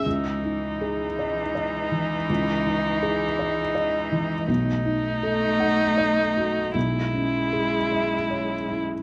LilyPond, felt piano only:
\new Staff \with { instrumentName = "Felt piano" } { \time 6/8 \key cis \minor \tempo 4. = 54 cis,8 dis'8 gis'8 dis''8 dis''8 e8 | cis,8 dis'8 gis'8 dis''8 dis''8 e8 | b,,8 dis'8 a'8 fis''8 dis''8 fis'8 | b,,8 cis'8 gis'8 e''8 cis''8 e'8 | }